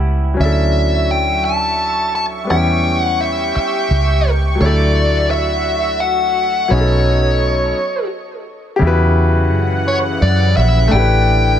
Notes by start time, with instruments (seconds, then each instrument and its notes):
Already playing: fingered electric bass C#2, grand piano G3 B3 C#4 E4 F#5, clean electric guitar E4 G4
0.34 grand piano F#3 C#4, analog synth pad F#3 C#6
0.38 fingered electric bass D2, grand piano D4, analog synth pad E5, lead electric guitar E5
0.42 grand piano E4 A4
1.11 lead electric guitar G5
1.45 lead electric guitar A5
2.15 lead electric guitar A5
2.44 grand piano G3 B3
2.50 fingered electric bass E2, grand piano C#4 E4, analog synth pad G4 G5, lead electric guitar G5
2.55 grand piano G4
3.01 lead electric guitar F#5
3.21 lead electric guitar E5
3.56 lead electric guitar E5, muted fingered electric bass stroke
3.91 fingered electric bass C#2
4.55 grand piano F#3 A3, analog synth pad E5
4.59 fingered electric bass D2, grand piano D4 E4, analog synth pad F#4, lead electric guitar D5
4.66 grand piano A4
5.31 lead electric guitar E5
6.00 lead electric guitar F#5
6.68 fingered electric bass B1, grand piano F#3 B3 C#4, analog synth pad A4 D#5, lead electric guitar C#5
6.73 grand piano D#4 G#4
6.80 grand piano A4
8.76 grand piano C#3 G4, analog synth pad C#3 E3 F#5
8.82 fingered electric bass E2, grand piano E4 F#4
8.87 grand piano B4
9.52 fingered electric bass F#2
9.88 lead electric guitar C#5
10.22 fingered electric bass F#2, lead electric guitar D5
10.57 fingered electric bass A#1, lead electric guitar E5
10.87 analog synth pad D3 A3 G4, grand piano A3 D4, lead electric guitar G5
10.93 fingered electric bass A1, grand piano E4 G4
10.99 grand piano B4